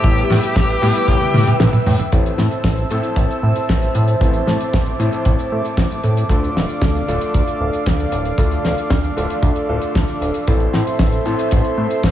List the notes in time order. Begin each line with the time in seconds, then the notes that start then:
Already playing: G4 E5 E6
0.04 A1 A2 G3 B3 E4 G4 B4 G5, kick, closed hi-hat
0.18 closed hi-hat
0.30 A2, snare, open hi-hat
0.43 closed hi-hat
0.56 A1, kick, snare, closed hi-hat
0.69 closed hi-hat
0.82 A2 G3 B3 E4 G4, open hi-hat
0.95 closed hi-hat
1.08 A1, kick, closed hi-hat, high tom
1.21 closed hi-hat, high tom
1.34 A2, open hi-hat, high tom
1.47 closed hi-hat, mid tom
1.60 A1, snare, closed hi-hat, mid tom
1.73 closed hi-hat, mid tom
1.86 A2, mid tom, open hi-hat
1.99 closed hi-hat, mid tom
2.12 A1 A2 A3 C4 E4 A4 C5 E5 A5 E6, kick, closed hi-hat
2.26 closed hi-hat
2.38 A2, snare, closed hi-hat
2.51 closed hi-hat
2.64 A1, kick, snare, closed hi-hat
2.77 closed hi-hat
2.91 A2 A3 C4 E4 A4, closed hi-hat
3.03 closed hi-hat
3.16 A1, kick, closed hi-hat
3.31 closed hi-hat
3.43 A2
3.56 closed hi-hat
3.69 A1, kick, snare, closed hi-hat
3.82 closed hi-hat
3.95 A2, closed hi-hat
4.08 closed hi-hat
4.21 A1 A2 A3 C4 E4 A4 D6, kick, closed hi-hat
4.33 closed hi-hat
4.47 A2, snare, closed hi-hat
4.60 closed hi-hat
4.74 A1, kick, snare, closed hi-hat
4.86 closed hi-hat
4.99 A2 A3 C4 E4 A4, closed hi-hat
5.13 closed hi-hat
5.25 A1, kick, closed hi-hat
5.39 closed hi-hat
5.52 A2
5.65 closed hi-hat
5.77 A1, kick, snare, closed hi-hat
5.91 closed hi-hat
6.03 A2, closed hi-hat
6.17 closed hi-hat
6.29 D2 D3 A3 D4 F4 A4 D5 F5, kick, closed hi-hat
6.44 closed hi-hat
6.56 D1, snare, closed hi-hat
6.69 closed hi-hat
6.82 D2, kick, snare, closed hi-hat
6.95 closed hi-hat
7.08 D1 D3 A3 D4 F4 A4, closed hi-hat
7.21 closed hi-hat
7.34 D2, kick, closed hi-hat
7.47 closed hi-hat
7.60 D1
7.73 closed hi-hat
7.86 D2, kick, snare, closed hi-hat
8.00 closed hi-hat
8.12 D1, closed hi-hat
8.25 closed hi-hat
8.38 D2 D3 A3 D4 F4 A4, kick, closed hi-hat
8.51 closed hi-hat
8.65 D1, snare, closed hi-hat
8.78 closed hi-hat
8.90 D2, kick, snare, closed hi-hat
9.03 closed hi-hat
9.17 D1 D3 A3 D4 F4 A4, closed hi-hat
9.30 closed hi-hat
9.43 D2, kick, closed hi-hat
9.56 closed hi-hat
9.69 D1 D3 A3 D4 F4 A4
9.81 closed hi-hat
9.95 D2, kick, snare, closed hi-hat
10.08 closed hi-hat
10.21 D1, closed hi-hat
10.34 closed hi-hat
10.47 A1 A2 A3 C4 E4 A4 C5 E5 C6, kick, closed hi-hat
10.60 closed hi-hat
10.73 A2, snare, closed hi-hat
10.87 closed hi-hat
10.99 A1, kick, snare, closed hi-hat
11.12 closed hi-hat
11.25 A2 A3 C4 E4 A4, closed hi-hat
11.39 closed hi-hat
11.51 A1, kick, closed hi-hat
11.65 closed hi-hat
11.78 A2
11.90 closed hi-hat
12.03 A1, kick, snare, closed hi-hat